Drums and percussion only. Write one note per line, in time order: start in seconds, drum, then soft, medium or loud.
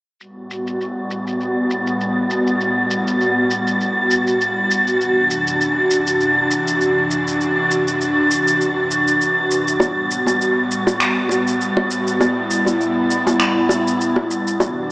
0.21 shaker soft
0.51 shaker medium
0.67 shaker soft
0.81 shaker soft
1.11 shaker medium
1.27 shaker soft
1.41 shaker soft
1.71 shaker medium
1.87 shaker soft
2.01 shaker soft
2.30 shaker medium
2.47 shaker soft
2.61 shaker soft
2.91 shaker medium
3.07 shaker soft
3.21 shaker soft
3.50 shaker medium
3.67 shaker soft
3.81 shaker soft
4.11 shaker medium
4.27 shaker soft
4.41 shaker soft
4.71 shaker medium
4.87 shaker soft
5.01 shaker soft
5.31 shaker medium
5.47 shaker soft
5.61 shaker soft
5.91 shaker medium
6.07 shaker soft
6.21 shaker soft
6.51 shaker medium
6.67 shaker soft
6.81 shaker soft
7.11 shaker medium
7.27 shaker soft
7.41 shaker soft
7.71 shaker medium
7.88 shaker soft
8.01 shaker soft
8.31 shaker medium
8.47 shaker soft
8.61 shaker soft
8.91 shaker medium
9.08 shaker soft
9.21 shaker soft
9.51 shaker medium
9.68 shaker soft
9.80 high bongo medium
9.80 shaker soft
10.11 shaker medium
10.27 high bongo medium
10.27 shaker soft
10.41 shaker soft
10.71 shaker medium
10.87 high bongo medium
10.87 shaker soft
11.00 finger snap medium
11.00 shaker soft
11.29 high bongo medium
11.29 shaker medium
11.47 shaker soft
11.61 shaker soft
11.77 high bongo medium
11.91 shaker medium
12.07 shaker soft
12.21 high bongo medium
12.21 shaker soft
12.51 shaker medium
12.66 high bongo medium
12.66 shaker soft
12.81 shaker soft
13.11 shaker medium
13.27 high bongo medium
13.27 shaker soft
13.40 finger snap medium
13.40 shaker soft
13.69 high bongo medium
13.69 shaker medium
13.87 shaker soft
14.01 shaker soft
14.16 high bongo medium
14.31 shaker medium
14.47 shaker soft
14.60 high bongo medium
14.60 shaker soft